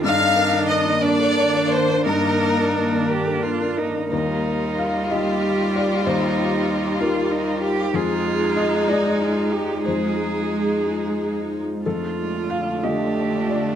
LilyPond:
<<
  \new Staff \with { instrumentName = "Violin section" } { \time 6/8 \key ees \lydian \tempo 4. = 61 f''4 ees''8 d''4 c''8 | bes'4. r4. | f'2.~ | f'2. |
ees'2. | ees'2~ ees'8 r8 | d'2. | }
  \new Staff \with { instrumentName = "Cello" } { \time 6/8 \key ees \lydian ees'4. d'4. | ees'4. g'8 f'8 ees'8 | ees'4. g'4. | ees'4. f'8 ees'8 g'8 |
f'4. ees'8 f'8 g'8 | aes'2~ aes'16 r8. | f'4. g'4. | }
  \new Staff \with { instrumentName = "Felt piano" } { \time 6/8 \key ees \lydian << { r2. | r2. | bes'4 f''8 ees''4 d''8 | c''4. bes'4. |
aes'4 ees''8 d''4. | c''2~ c''8 r8 | a'4 f''8 ees''4 d''8 | } \\ { g,16 d'16 bes'16 d'16 bes'16 d'16 bes'16 a'16 bes'16 d'16 bes'16 d'16 | g,16 bes16 bes'16 d'16 bes'16 d'16 bes'16 a'16 bes'16 d'16 bes'16 d'16 | ees,4. <g ees' f'>4. | ees,4. <g ees' f'>4. |
f,4. <aes ees' f'>4. | f,4. <aes ees' f'>4. | f,4. <d a f'>4. | } >> }
  \new Staff \with { instrumentName = "Ambient pad" } { \time 6/8 \key ees \lydian <ees bes bes'>2.~ | <ees bes bes'>2. | <ees' f' g'>2.~ | <ees' f' g'>2. |
<aes ees' f'>2.~ | <aes ees' f'>2. | <d f' a'>2. | }
  \new Staff \with { instrumentName = "Viola" } { \time 6/8 \key ees \lydian d'4. d'4. | d'2~ d'8 r8 | g2.~ | g2. |
aes2. | aes2~ aes8 r8 | a2. | }
>>